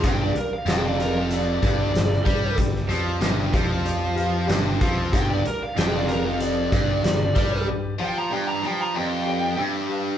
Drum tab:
HH |x-x-x-x-x-x-x-x-|x-x-x-x-x-x-x-x-|x-x-x-x-x-x-x-x-|----------------|
SD |----o-------oo--|-o--o-------o---|----o-------o---|----------------|
BD |o---------o---o-|o-----o-------o-|o---------o---o-|----------------|